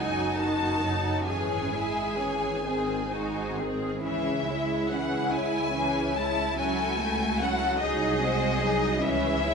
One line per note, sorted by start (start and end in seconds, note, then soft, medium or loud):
0.00 1.12 F#1 soft
0.00 0.36 F#3 soft
0.00 0.36 D#4 soft
0.00 1.28 D#4 soft
0.00 0.36 F#4 soft
0.00 0.36 A4 soft
0.00 0.38 G#5 medium
0.37 0.83 D#3 soft
0.37 0.83 D#4 soft
0.37 0.82 F#4 soft
0.37 0.84 F#4 soft
0.37 1.28 A5 medium
0.83 1.28 F#3 soft
0.83 1.29 D#4 soft
0.83 1.29 F#4 soft
0.83 1.29 A4 soft
1.27 2.49 G#1 soft
1.27 1.70 E3 soft
1.27 1.70 C#4 soft
1.27 2.56 G#4 soft
1.27 1.71 G#4 soft
1.27 1.71 C#5 soft
1.27 3.53 G#5 medium
1.73 2.19 G#3 soft
1.73 2.19 E4 soft
1.73 2.19 E5 soft
2.19 2.65 E3 soft
2.19 2.65 C#4 soft
2.19 2.64 G#4 soft
2.19 2.65 C#5 soft
2.64 3.87 G#1 soft
2.64 3.08 D#3 soft
2.64 3.08 C4 soft
2.64 3.08 G#4 soft
3.11 3.59 G#3 soft
3.11 3.58 D#4 soft
3.11 3.59 D#4 soft
3.11 3.57 F#4 soft
3.11 3.58 C5 soft
3.58 4.03 D#3 soft
3.58 4.03 C4 soft
3.58 4.04 C4 soft
3.58 4.03 G#4 soft
3.58 4.02 G#4 soft
4.03 5.17 C#2 soft
4.03 4.44 E3 soft
4.03 4.44 C#4 soft
4.03 7.78 E4 soft
4.03 4.44 G#4 soft
4.03 4.85 E5 medium
4.47 4.90 G#3 soft
4.47 4.90 E4 soft
4.47 4.90 C#5 soft
4.89 5.33 E3 soft
4.89 5.32 C#4 soft
4.89 5.33 C#4 soft
4.89 5.33 G#4 soft
4.89 5.32 F#5 medium
5.31 6.43 C#2 soft
5.31 5.75 G#3 soft
5.31 5.75 E4 soft
5.31 5.75 C#5 soft
5.31 6.17 G#5 medium
5.75 6.14 E3 soft
5.75 6.14 C#4 soft
5.75 6.14 G#4 soft
6.17 6.58 G#3 soft
6.17 6.58 E4 soft
6.17 6.59 C#5 soft
6.17 6.58 A5 medium
6.58 7.67 C#2 medium
6.58 6.96 F#3 soft
6.58 6.96 C#4 soft
6.58 6.97 F#4 soft
6.58 6.97 A4 soft
6.58 7.38 G#5 medium
6.99 7.41 A3 soft
6.99 7.39 F#4 soft
6.99 7.40 A4 soft
7.40 7.81 F#3 soft
7.40 7.82 C#4 soft
7.40 7.82 F#4 soft
7.40 7.82 A4 soft
7.40 7.81 F#5 medium
7.80 8.88 C2 medium
7.80 8.20 F#3 soft
7.80 8.20 D#4 soft
7.80 9.00 G#4 medium
7.80 8.20 G#4 soft
7.80 9.00 D#5 medium
8.22 8.63 G#3 soft
8.22 8.63 C4 soft
8.22 8.63 F#4 soft
8.22 8.63 C5 soft
8.62 9.03 F#3 soft
8.62 9.03 D#4 soft
8.62 9.02 G#4 soft
9.02 9.54 C#2 medium
9.02 9.42 E3 soft
9.02 9.42 C#4 medium
9.02 9.54 E4 medium
9.02 9.42 G#4 soft
9.02 9.54 E5 medium
9.44 9.54 G#3 soft
9.44 9.54 E4 soft
9.44 9.54 C#5 soft